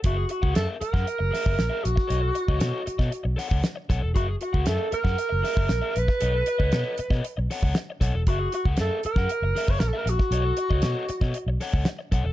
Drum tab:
HH |x-x-x-x-x-o-x-x-|x-x-x-x-x-o-x-x-|x-x-x-x-x-o-x-x-|x-x-x-x-x-o-x-x-|
SD |----o--o--o-o--o|----o--o--o-o-o-|----o--o--o-o--o|----o--o--o-o-o-|
BD |o--o---o---o---o|---o---o---o--o-|o--o---o---o---o|---o---o---o--o-|

HH |x-x-x-x-x-o-x-x-|x-x-x-x-x-o-x-x-|
SD |----o--o--o-o--o|----o--o--o-o-o-|
BD |o--o---o---o---o|---o---o---o--o-|